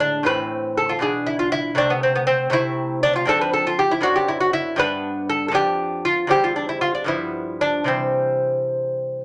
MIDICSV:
0, 0, Header, 1, 2, 480
1, 0, Start_track
1, 0, Key_signature, 0, "minor"
1, 0, Tempo, 505051
1, 251, Time_signature, 6, 3, 24, 8
1, 3133, Key_signature, 0, "major"
1, 6488, Tempo, 538117
1, 8647, End_track
2, 0, Start_track
2, 0, Title_t, "Lute"
2, 0, Program_c, 0, 24
2, 0, Note_on_c, 0, 45, 49
2, 0, Note_on_c, 0, 50, 41
2, 0, Note_on_c, 0, 56, 39
2, 2, Note_on_c, 0, 62, 71
2, 209, Note_off_c, 0, 45, 0
2, 216, Note_off_c, 0, 50, 0
2, 220, Note_on_c, 0, 45, 53
2, 222, Note_off_c, 0, 56, 0
2, 233, Note_on_c, 0, 52, 43
2, 239, Note_off_c, 0, 62, 0
2, 245, Note_on_c, 0, 60, 43
2, 250, Note_on_c, 0, 71, 88
2, 718, Note_off_c, 0, 71, 0
2, 736, Note_on_c, 0, 69, 67
2, 849, Note_on_c, 0, 65, 59
2, 858, Note_off_c, 0, 69, 0
2, 936, Note_off_c, 0, 45, 0
2, 940, Note_on_c, 0, 47, 48
2, 941, Note_off_c, 0, 52, 0
2, 952, Note_on_c, 0, 52, 40
2, 953, Note_off_c, 0, 60, 0
2, 961, Note_on_c, 0, 62, 41
2, 971, Note_on_c, 0, 68, 82
2, 974, Note_off_c, 0, 65, 0
2, 1202, Note_on_c, 0, 64, 62
2, 1203, Note_off_c, 0, 68, 0
2, 1319, Note_off_c, 0, 64, 0
2, 1323, Note_on_c, 0, 65, 63
2, 1440, Note_off_c, 0, 65, 0
2, 1444, Note_on_c, 0, 64, 85
2, 1655, Note_off_c, 0, 47, 0
2, 1658, Note_off_c, 0, 52, 0
2, 1662, Note_on_c, 0, 48, 57
2, 1666, Note_off_c, 0, 62, 0
2, 1669, Note_on_c, 0, 57, 50
2, 1681, Note_off_c, 0, 64, 0
2, 1681, Note_on_c, 0, 60, 45
2, 1691, Note_on_c, 0, 62, 83
2, 1804, Note_off_c, 0, 60, 0
2, 1808, Note_on_c, 0, 59, 56
2, 1815, Note_off_c, 0, 62, 0
2, 1928, Note_off_c, 0, 59, 0
2, 1931, Note_on_c, 0, 60, 63
2, 2044, Note_off_c, 0, 60, 0
2, 2048, Note_on_c, 0, 59, 64
2, 2152, Note_off_c, 0, 59, 0
2, 2156, Note_on_c, 0, 60, 80
2, 2363, Note_off_c, 0, 48, 0
2, 2374, Note_off_c, 0, 57, 0
2, 2375, Note_on_c, 0, 48, 58
2, 2384, Note_off_c, 0, 60, 0
2, 2386, Note_on_c, 0, 57, 45
2, 2396, Note_on_c, 0, 60, 45
2, 2405, Note_on_c, 0, 64, 86
2, 2868, Note_off_c, 0, 64, 0
2, 2880, Note_on_c, 0, 62, 85
2, 2997, Note_off_c, 0, 62, 0
2, 3001, Note_on_c, 0, 65, 62
2, 3090, Note_off_c, 0, 48, 0
2, 3094, Note_on_c, 0, 41, 63
2, 3096, Note_off_c, 0, 57, 0
2, 3096, Note_off_c, 0, 60, 0
2, 3107, Note_on_c, 0, 60, 49
2, 3111, Note_off_c, 0, 65, 0
2, 3115, Note_on_c, 0, 62, 52
2, 3125, Note_on_c, 0, 69, 99
2, 3240, Note_off_c, 0, 69, 0
2, 3244, Note_on_c, 0, 71, 72
2, 3355, Note_off_c, 0, 71, 0
2, 3359, Note_on_c, 0, 69, 77
2, 3482, Note_off_c, 0, 62, 0
2, 3484, Note_off_c, 0, 69, 0
2, 3486, Note_on_c, 0, 65, 69
2, 3601, Note_on_c, 0, 67, 86
2, 3607, Note_off_c, 0, 65, 0
2, 3720, Note_on_c, 0, 64, 67
2, 3724, Note_off_c, 0, 67, 0
2, 3804, Note_off_c, 0, 41, 0
2, 3804, Note_off_c, 0, 60, 0
2, 3808, Note_on_c, 0, 42, 57
2, 3816, Note_on_c, 0, 60, 48
2, 3828, Note_off_c, 0, 64, 0
2, 3828, Note_on_c, 0, 62, 47
2, 3832, Note_on_c, 0, 66, 97
2, 3950, Note_on_c, 0, 67, 70
2, 3959, Note_off_c, 0, 66, 0
2, 4071, Note_on_c, 0, 64, 68
2, 4077, Note_off_c, 0, 67, 0
2, 4182, Note_off_c, 0, 64, 0
2, 4186, Note_on_c, 0, 66, 70
2, 4304, Note_off_c, 0, 66, 0
2, 4308, Note_on_c, 0, 64, 87
2, 4521, Note_off_c, 0, 42, 0
2, 4525, Note_off_c, 0, 60, 0
2, 4526, Note_on_c, 0, 43, 59
2, 4531, Note_off_c, 0, 62, 0
2, 4539, Note_on_c, 0, 59, 50
2, 4542, Note_off_c, 0, 64, 0
2, 4546, Note_on_c, 0, 62, 53
2, 4556, Note_on_c, 0, 71, 94
2, 5018, Note_off_c, 0, 71, 0
2, 5032, Note_on_c, 0, 69, 82
2, 5200, Note_off_c, 0, 69, 0
2, 5211, Note_on_c, 0, 69, 65
2, 5237, Note_off_c, 0, 43, 0
2, 5242, Note_on_c, 0, 41, 58
2, 5244, Note_off_c, 0, 59, 0
2, 5248, Note_off_c, 0, 62, 0
2, 5253, Note_on_c, 0, 59, 45
2, 5264, Note_on_c, 0, 62, 47
2, 5268, Note_off_c, 0, 69, 0
2, 5272, Note_on_c, 0, 67, 92
2, 5734, Note_off_c, 0, 67, 0
2, 5747, Note_off_c, 0, 62, 0
2, 5751, Note_on_c, 0, 65, 85
2, 5957, Note_off_c, 0, 41, 0
2, 5961, Note_on_c, 0, 40, 59
2, 5964, Note_off_c, 0, 59, 0
2, 5975, Note_on_c, 0, 55, 45
2, 5982, Note_on_c, 0, 60, 46
2, 5985, Note_off_c, 0, 65, 0
2, 5994, Note_on_c, 0, 67, 95
2, 6117, Note_off_c, 0, 67, 0
2, 6119, Note_on_c, 0, 65, 63
2, 6230, Note_off_c, 0, 65, 0
2, 6234, Note_on_c, 0, 62, 60
2, 6353, Note_off_c, 0, 62, 0
2, 6357, Note_on_c, 0, 64, 60
2, 6471, Note_off_c, 0, 64, 0
2, 6474, Note_on_c, 0, 65, 75
2, 6591, Note_off_c, 0, 65, 0
2, 6595, Note_on_c, 0, 62, 55
2, 6679, Note_off_c, 0, 40, 0
2, 6682, Note_on_c, 0, 43, 49
2, 6686, Note_off_c, 0, 55, 0
2, 6689, Note_off_c, 0, 60, 0
2, 6696, Note_on_c, 0, 53, 40
2, 6704, Note_on_c, 0, 59, 38
2, 6710, Note_off_c, 0, 62, 0
2, 6714, Note_on_c, 0, 64, 73
2, 7173, Note_off_c, 0, 64, 0
2, 7188, Note_on_c, 0, 62, 70
2, 7391, Note_off_c, 0, 43, 0
2, 7395, Note_on_c, 0, 48, 48
2, 7401, Note_off_c, 0, 53, 0
2, 7405, Note_off_c, 0, 59, 0
2, 7408, Note_on_c, 0, 52, 38
2, 7418, Note_on_c, 0, 55, 38
2, 7421, Note_off_c, 0, 62, 0
2, 7425, Note_on_c, 0, 60, 65
2, 8605, Note_off_c, 0, 60, 0
2, 8647, Note_off_c, 0, 48, 0
2, 8647, Note_off_c, 0, 52, 0
2, 8647, Note_off_c, 0, 55, 0
2, 8647, End_track
0, 0, End_of_file